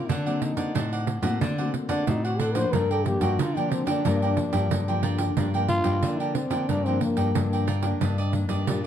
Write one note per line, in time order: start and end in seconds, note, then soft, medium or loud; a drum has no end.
0.00 0.20 A#3 medium
0.00 0.20 C4 medium
0.00 0.11 F4 medium
0.00 0.20 F#4 medium
0.09 0.51 D3 loud
0.09 0.72 D3 medium
0.09 0.43 D4 medium
0.09 0.25 D4 medium
0.09 0.25 C5 medium
0.09 0.25 D5 medium
0.09 0.25 F#5 medium
0.09 pandeiro medium
0.26 0.70 A#3 medium
0.26 0.71 C4 medium
0.26 0.71 F#4 medium
0.26 0.41 C5 medium
0.26 0.41 D5 medium
0.26 0.41 F#5 medium
0.26 pandeiro soft
0.41 1.08 D#4 medium
0.41 muted cavaquinho stroke soft
0.41 pandeiro medium
0.57 0.72 D3 medium
0.57 0.74 C5 medium
0.57 0.73 D5 medium
0.57 0.73 F#5 medium
0.57 pandeiro medium
0.75 1.17 A2 medium
0.75 1.20 C4 medium
0.75 0.90 D4 medium
0.75 1.20 F#4 medium
0.75 0.91 C5 medium
0.75 0.91 D5 medium
0.75 0.91 F#5 medium
0.75 pandeiro medium
0.92 1.23 C5 medium
0.92 1.23 D5 medium
0.92 1.22 F#5 medium
0.92 pandeiro soft
1.07 pandeiro medium
1.22 1.37 A2 medium
1.22 1.51 A#3 medium
1.22 1.52 C4 medium
1.22 1.52 F#4 medium
1.22 1.40 C5 soft
1.22 1.40 D5 medium
1.22 1.39 F#5 medium
1.22 pandeiro medium
1.41 1.69 D3 loud
1.41 2.04 D3 medium
1.41 1.56 D4 medium
1.41 1.57 C5 medium
1.41 1.57 D5 medium
1.41 1.57 F#5 medium
1.41 pandeiro medium
1.58 2.02 A#3 medium
1.58 2.02 C4 medium
1.58 2.03 F#4 medium
1.58 1.73 C5 soft
1.58 1.73 D5 medium
1.58 1.73 F#5 medium
1.58 pandeiro soft
1.74 muted cavaquinho stroke soft
1.74 pandeiro medium
1.89 2.04 D3 loud
1.89 2.09 D4 medium
1.89 2.22 C5 medium
1.89 2.22 D5 medium
1.89 2.22 F#5 medium
1.89 pandeiro medium
2.07 2.63 A2 medium
2.07 2.51 C4 medium
2.07 2.26 D#4 medium
2.07 2.52 F#4 medium
2.07 pandeiro medium
2.24 2.41 F#4 medium
2.24 2.39 C5 medium
2.24 2.40 D5 medium
2.24 2.39 F#5 medium
2.24 pandeiro soft
2.39 2.55 D4 medium
2.39 2.57 A4 medium
2.39 2.55 C5 medium
2.39 2.55 D5 medium
2.39 2.54 F#5 medium
2.39 pandeiro medium
2.55 2.83 F3 medium
2.55 2.84 A#3 medium
2.55 2.84 D4 medium
2.55 2.75 C5 loud
2.55 2.72 C5 soft
2.55 2.71 D5 soft
2.55 2.71 F#5 medium
2.55 pandeiro medium
2.73 3.15 G2 medium
2.73 3.36 G2 medium
2.73 2.88 F4 medium
2.73 2.93 A#4 loud
2.73 2.89 A#4 medium
2.73 2.89 D5 medium
2.73 2.89 G5 medium
2.73 pandeiro medium
2.91 3.07 A4 medium
2.91 3.05 A#4 medium
2.91 3.05 D5 medium
2.91 3.05 G5 medium
2.91 pandeiro soft
3.05 3.36 F3 medium
3.05 3.37 A#3 medium
3.05 3.37 D4 medium
3.05 3.22 G4 medium
3.05 muted cavaquinho stroke soft
3.05 pandeiro medium
3.21 3.36 G2 medium
3.21 3.42 F#4 medium
3.21 3.38 A#4 medium
3.21 3.38 D5 medium
3.21 3.37 G5 medium
3.21 pandeiro medium
3.39 4.02 D3 medium
3.39 3.81 D3 medium
3.39 3.54 F4 medium
3.39 3.59 F4 medium
3.39 3.55 A#4 medium
3.39 3.55 D5 medium
3.39 3.55 G5 medium
3.39 pandeiro medium
3.55 3.83 F3 medium
3.55 3.83 A#3 medium
3.55 3.83 D4 medium
3.55 3.73 D4 medium
3.55 3.87 A#4 medium
3.55 3.87 D5 medium
3.55 3.86 G5 medium
3.55 pandeiro soft
3.71 3.89 C4 medium
3.71 pandeiro medium
3.86 4.02 D3 medium
3.86 3.98 F3 medium
3.86 3.99 A#3 medium
3.86 3.99 D4 medium
3.86 5.20 D4 medium
3.86 4.04 A#4 medium
3.86 4.04 D5 medium
3.86 4.03 G5 medium
3.86 pandeiro medium
4.04 4.67 G2 medium
4.04 4.33 G2 medium
4.04 4.32 F3 medium
4.04 4.32 A#3 medium
4.04 4.33 D4 medium
4.04 4.20 F4 soft
4.04 4.21 A#4 medium
4.04 4.21 D5 medium
4.04 4.21 G5 medium
4.04 pandeiro medium
4.22 4.36 A#4 medium
4.22 4.37 D5 medium
4.22 4.37 G5 medium
4.22 pandeiro soft
4.36 4.81 F3 medium
4.36 4.82 A#3 medium
4.36 4.82 D4 medium
4.36 muted cavaquinho stroke soft
4.36 pandeiro medium
4.53 4.67 G2 loud
4.53 4.86 A#4 medium
4.53 4.86 D5 medium
4.53 4.85 G5 medium
4.53 pandeiro medium
4.70 5.27 G2 medium
4.70 5.33 D3 medium
4.70 pandeiro medium
4.88 5.32 F3 medium
4.88 5.32 A#3 medium
4.88 5.32 D4 medium
4.88 5.02 A#4 medium
4.88 5.02 D5 medium
4.88 5.03 G5 medium
4.88 pandeiro soft
5.03 5.19 F4 medium
5.03 5.19 A#4 medium
5.03 5.18 D5 medium
5.03 5.17 G5 medium
5.03 pandeiro medium
5.18 5.36 A#4 soft
5.18 5.35 D5 medium
5.18 5.35 G5 soft
5.18 pandeiro medium
5.37 6.00 G2 medium
5.37 5.79 G2 medium
5.37 5.48 F3 medium
5.37 5.48 A#3 medium
5.37 5.49 D4 medium
5.37 5.52 F4 medium
5.37 5.53 A#4 medium
5.37 5.53 D5 medium
5.37 5.53 G5 medium
5.37 pandeiro medium
5.53 5.98 F3 medium
5.53 5.98 A#3 soft
5.53 5.98 D4 medium
5.53 5.68 A#4 medium
5.53 5.69 D5 medium
5.53 5.69 G5 medium
5.53 pandeiro soft
5.68 6.21 F4 loud
5.68 muted cavaquinho stroke soft
5.68 pandeiro medium
5.84 5.99 G2 medium
5.84 6.01 A#4 medium
5.84 6.01 D5 medium
5.84 6.01 G5 medium
5.84 pandeiro medium
6.02 6.65 D3 medium
6.02 6.45 D3 medium
6.02 6.34 F3 medium
6.02 6.34 A#3 medium
6.02 6.34 D4 medium
6.02 6.18 F4 medium
6.02 6.19 A#4 medium
6.02 6.19 D5 medium
6.02 6.19 G5 medium
6.02 pandeiro medium
6.20 6.36 D4 medium
6.20 6.51 A#4 medium
6.20 6.50 D5 medium
6.20 6.50 G5 medium
6.20 pandeiro soft
6.35 6.70 C4 medium
6.35 pandeiro medium
6.50 6.65 D3 medium
6.50 6.79 F3 medium
6.50 6.79 A#3 medium
6.50 6.80 D4 medium
6.50 6.68 A#4 medium
6.50 6.67 D5 medium
6.50 6.67 G5 medium
6.50 pandeiro medium
6.68 7.32 G2 medium
6.68 6.97 G2 medium
6.68 6.87 D4 loud
6.68 6.84 F4 soft
6.68 6.85 A#4 medium
6.68 6.85 D5 medium
6.68 6.85 G5 medium
6.68 pandeiro medium
6.86 7.30 F3 medium
6.86 7.30 A#3 medium
6.86 7.03 C4 medium
6.86 7.30 D4 medium
6.86 7.01 A#4 medium
6.86 7.01 D5 medium
6.86 7.01 G5 medium
6.86 pandeiro soft
7.01 7.68 A#3 medium
7.01 muted cavaquinho stroke soft
7.01 pandeiro medium
7.17 7.31 G2 loud
7.17 7.50 A#4 medium
7.17 7.50 D5 medium
7.17 7.49 G5 medium
7.17 pandeiro medium
7.34 7.91 G2 medium
7.34 7.97 D3 medium
7.34 7.66 F3 medium
7.34 7.66 A#3 medium
7.34 7.66 D4 medium
7.34 pandeiro medium
7.53 7.67 A#4 medium
7.53 7.67 D5 medium
7.53 7.67 G5 medium
7.53 pandeiro soft
7.67 7.83 F4 medium
7.67 7.83 A#4 medium
7.67 7.82 D5 medium
7.67 7.81 G5 medium
7.67 pandeiro medium
7.82 8.11 D#3 medium
7.82 8.12 A#3 medium
7.82 8.12 D4 medium
7.82 7.99 A#4 soft
7.82 7.99 D5 soft
7.82 7.99 G5 medium
7.82 pandeiro medium
8.01 8.43 G2 loud
8.01 8.64 G2 medium
8.01 8.16 D4 medium
8.01 8.16 G4 medium
8.01 8.17 D5 medium
8.01 8.17 D#5 medium
8.01 pandeiro medium
8.18 8.33 G4 medium
8.18 8.33 D5 medium
8.18 8.33 D#5 medium
8.18 pandeiro soft
8.33 8.78 D#3 medium
8.33 8.78 A#3 medium
8.33 8.78 D4 medium
8.33 muted cavaquinho stroke soft
8.33 pandeiro medium
8.49 8.64 G2 medium
8.49 8.66 G4 medium
8.49 8.65 D5 medium
8.49 8.65 D#5 medium
8.49 pandeiro medium
8.67 8.87 G2 medium
8.67 8.87 A#2 medium
8.67 8.82 G3 medium
8.67 8.82 D4 medium
8.67 8.83 G4 medium
8.67 8.83 D5 medium
8.67 8.83 D#5 medium
8.67 pandeiro medium